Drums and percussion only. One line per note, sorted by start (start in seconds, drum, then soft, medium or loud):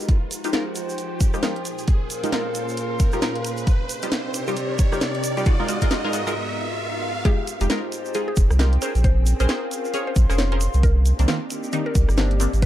0.00 shaker medium
0.09 kick loud
0.09 closed hi-hat medium
0.09 shaker soft
0.31 closed hi-hat loud
0.31 shaker loud
0.44 closed hi-hat medium
0.44 shaker medium
0.53 snare loud
0.53 closed hi-hat medium
0.53 shaker soft
0.75 closed hi-hat loud
0.75 shaker medium
0.89 shaker medium
0.98 closed hi-hat medium
0.98 shaker soft
1.21 kick loud
1.21 closed hi-hat loud
1.21 shaker loud
1.34 cross-stick medium
1.34 shaker medium
1.43 snare loud
1.43 closed hi-hat medium
1.43 shaker soft
1.56 closed hi-hat soft
1.65 closed hi-hat loud
1.65 shaker medium
1.78 closed hi-hat soft
1.78 shaker medium
1.88 kick loud
1.88 closed hi-hat medium
1.88 shaker soft
2.10 closed hi-hat loud
2.10 shaker medium
2.24 closed hi-hat medium
2.24 shaker soft
2.32 snare loud
2.32 closed hi-hat medium
2.32 shaker soft
2.55 closed hi-hat loud
2.55 shaker medium
2.69 shaker medium
2.77 closed hi-hat medium
2.77 shaker soft
3.00 kick loud
3.00 closed hi-hat loud
3.00 shaker medium
3.12 cross-stick medium
3.12 shaker soft
3.22 snare loud
3.22 closed hi-hat medium
3.22 shaker soft
3.36 closed hi-hat soft
3.44 closed hi-hat loud
3.44 shaker medium
3.57 closed hi-hat soft
3.57 shaker medium
3.67 kick loud
3.67 closed hi-hat medium
3.67 shaker soft
3.89 closed hi-hat loud
3.89 shaker medium
4.02 closed hi-hat medium
4.02 shaker soft
4.12 snare loud
4.12 closed hi-hat medium
4.12 shaker soft
4.34 closed hi-hat loud
4.34 shaker medium
4.47 shaker soft
4.56 closed hi-hat medium
4.56 shaker soft
4.79 kick medium
4.79 closed hi-hat loud
4.79 shaker medium
4.92 cross-stick medium
4.92 shaker soft
5.01 snare loud
5.01 closed hi-hat medium
5.01 shaker soft
5.15 closed hi-hat soft
5.24 closed hi-hat loud
5.24 shaker loud
5.37 closed hi-hat soft
5.37 shaker soft
5.45 kick loud
5.45 closed hi-hat medium
5.45 shaker soft
5.68 closed hi-hat loud
5.68 shaker medium
5.81 kick medium
5.81 cross-stick soft
5.81 closed hi-hat medium
5.81 shaker soft
5.91 snare loud
5.91 closed hi-hat medium
5.91 shaker soft
6.13 closed hi-hat loud
6.13 shaker medium
6.27 shaker medium
7.25 kick loud
7.25 closed hi-hat medium
7.25 shaker soft
7.47 closed hi-hat loud
7.47 shaker medium
7.61 closed hi-hat medium
7.61 shaker medium
7.70 snare loud
7.70 closed hi-hat medium
7.70 shaker soft
7.92 closed hi-hat loud
7.92 shaker medium
8.05 shaker soft
8.14 closed hi-hat medium
8.14 shaker soft
8.37 kick loud
8.37 closed hi-hat loud
8.37 shaker medium
8.51 cross-stick medium
8.51 shaker medium
8.59 snare loud
8.59 closed hi-hat medium
8.59 shaker soft
8.73 closed hi-hat soft
8.82 closed hi-hat loud
8.82 shaker medium
8.95 closed hi-hat soft
8.95 shaker medium
9.04 kick loud
9.04 closed hi-hat medium
9.04 shaker soft
9.26 closed hi-hat loud
9.26 shaker medium
9.40 closed hi-hat medium
9.40 shaker medium
9.49 snare loud
9.49 closed hi-hat medium
9.49 shaker soft
9.71 closed hi-hat medium
9.71 shaker medium
9.85 shaker medium
9.94 closed hi-hat medium
9.94 shaker soft
10.16 kick loud
10.16 closed hi-hat loud
10.16 shaker medium
10.30 cross-stick medium
10.30 shaker medium
10.38 snare loud
10.38 closed hi-hat medium
10.38 shaker soft
10.52 closed hi-hat soft
10.61 closed hi-hat loud
10.61 shaker loud
10.74 closed hi-hat soft
10.74 shaker medium
10.83 kick loud
10.83 closed hi-hat medium
10.83 shaker soft
11.06 closed hi-hat loud
11.06 shaker medium
11.19 closed hi-hat medium
11.19 shaker medium
11.28 snare loud
11.28 closed hi-hat medium
11.28 shaker soft
11.50 closed hi-hat medium
11.50 shaker loud
11.64 shaker medium
11.72 closed hi-hat medium
11.72 shaker soft
11.95 kick loud
11.95 closed hi-hat loud
11.95 shaker loud
12.09 cross-stick medium
12.09 shaker medium
12.17 snare loud
12.17 closed hi-hat medium
12.17 shaker soft
12.31 closed hi-hat soft
12.40 closed hi-hat medium
12.40 shaker medium
12.53 closed hi-hat soft
12.53 shaker medium
12.62 kick loud
12.62 closed hi-hat medium
12.62 shaker soft